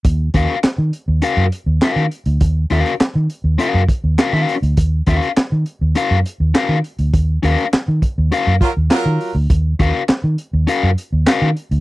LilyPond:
<<
  \new Staff \with { instrumentName = "Overdriven electric guitar" } { \time 4/4 \key ees \minor \tempo 4 = 102 r8 <des' ges' bes' f''>16 r4 r16 <des' ges' bes' f''>16 r8. <des' ges' bes' f''>16 r8. | r8 <des' ges' bes' f''>16 r4 r16 <des' ges' bes' f''>16 r8. <des' ges' bes' f''>16 <des' ges' bes' f''>16 r8 | r8 <des' ges' bes' f''>16 r4 r16 <des' ges' bes' f''>16 r8. <des' ges' bes' f''>16 r8. | r8 <des' ges' bes' f''>16 r4 r16 <des' ges' bes' f''>16 r4. r16 |
r8 <des' ges' bes' f''>16 r4 r16 <des' ges' bes' f''>16 r8. <des' ges' bes' f''>16 r8. | }
  \new Staff \with { instrumentName = "Horn section" } { \time 4/4 \key ees \minor r1 | r1 | r1 | r2 r8 <ges f' bes'>16 r16 <ges f' bes'>8. r16 |
r1 | }
  \new Staff \with { instrumentName = "Fingered electric bass" } { \clef bass \time 4/4 \key ees \minor ees,8 ees,16 r8 ees16 r16 ees,16 r16 ges,16 r16 ees,16 r16 ees16 r16 d,16 | ees,8 ees,16 r8 ees16 r16 ees,16 r16 ges,16 r16 ees,16 r16 ees16 r16 d,16 | ees,8 ees,16 r8 ees16 r16 ees,16 r16 ges,16 r16 ees,16 r16 ees16 r16 d,16 | ees,8 ees,16 r8 ees16 r16 ees,16 r16 ges,16 r16 ees,16 r16 ees16 r16 d,16 |
ees,8 ees,16 r8 ees16 r16 ees,16 r16 ges,16 r16 ees,16 r16 ees16 r16 d,16 | }
  \new DrumStaff \with { instrumentName = "Drums" } \drummode { \time 4/4 <hh bd>8 <hh bd>8 <hc hh sn>8 hh8 hh8 hh8 <hc hh sn>8 hh16 hh16 | <hh bd>8 hh16 hh16 <hc hh sn>8 hh8 hh8 <hh bd>8 <hc hh sn>8 hh16 hh16 | <hh bd>8 <hh bd>16 hh16 <hc hh sn>8 hh8 hh8 hh8 <hc hh sn>8 hh16 hh16 | <hh bd>8 hh16 hh16 <hc hh sn>8 <hh bd>8 hh8 <hh bd>8 <hc hh sn>8 hho8 |
<hh bd>8 <hh bd>8 <hc hh sn>8 hh8 hh8 hh8 <hc hh sn>8 hh16 hh16 | }
>>